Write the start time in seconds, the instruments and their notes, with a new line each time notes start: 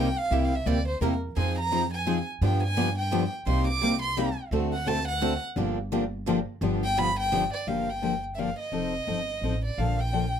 Already playing: upright bass C2, violin G5
0.18 violin F5
0.31 upright bass C2, steel-string acoustic guitar C3 G3 A#3 E4 G4, violin E5
0.45 violin F5
0.55 violin E5
0.66 upright bass D2, steel-string acoustic guitar C3 G3 A#3 E4 G4, violin D5
0.88 violin C5
1.01 upright bass E2, steel-string acoustic guitar C3 G3 A#3 E4 G4, violin A#4
1.36 upright bass F2, steel-string acoustic guitar F3 C4 D#4 G#4, violin G#5
1.59 violin A#5
1.72 steel-string acoustic guitar F3 C4 D#4 G#4
1.94 violin G#5
2.06 steel-string acoustic guitar F3 C4 D#4 G#4
2.41 upright bass G2, steel-string acoustic guitar D3 F3 B3 D4 G4, violin G5
2.64 violin G#5
2.77 steel-string acoustic guitar D3 F3 B3 D4 G4
2.98 violin G5
3.12 steel-string acoustic guitar D3 F3 B3 D4 G4
3.46 upright bass C2, steel-string acoustic guitar C3 G3 A#3 D#4 G4, violin C6
3.68 violin D6
3.82 steel-string acoustic guitar C3 G3 A#3 D#4 G4
4.03 violin C6
4.17 steel-string acoustic guitar C3 G3 A#3 D#4 G4
4.51 upright bass D2, steel-string acoustic guitar D3 A3 C4 F#4 A4
4.73 violin F#5
4.86 steel-string acoustic guitar D3 A3 C4 F#4 A4, violin A5
5.08 violin F#5
5.21 steel-string acoustic guitar D3 A3 C4 F#4 A4
5.56 upright bass G1, steel-string acoustic guitar D3 F3 A#3 D4 G4
5.92 steel-string acoustic guitar D3 F3 A#3 D4 G4
6.27 steel-string acoustic guitar D3 F3 A#3 D4 G4
6.61 upright bass G1, steel-string acoustic guitar D3 F3 B3 D4 G4
6.84 violin G5
6.97 steel-string acoustic guitar D3 F3 B3 D4 G4, violin B5
7.20 violin G5
7.32 steel-string acoustic guitar D3 F3 B3 D4 G4
7.53 violin D5
7.67 upright bass G1, steel-string acoustic guitar D3 F3 A#3 D4 G4, violin F5
7.90 violin G5
8.02 steel-string acoustic guitar D3 F3 A#3 D4 G4
8.35 steel-string acoustic guitar D3 F3 A#3, violin E5
8.39 steel-string acoustic guitar D4 G4, violin F5
8.59 violin D#5
8.72 upright bass F1, steel-string acoustic guitar F3 C4 D#4 A4
9.07 upright bass G1, steel-string acoustic guitar F3 C4 D#4 A4
9.42 upright bass A1, steel-string acoustic guitar F3 C4 D#4 A4
9.65 violin D5
9.78 upright bass A#1, steel-string acoustic guitar D3 F3 A#3 D4 A4, violin F5
10.00 violin G5
10.13 steel-string acoustic guitar D3 F3 A#3 D4 A4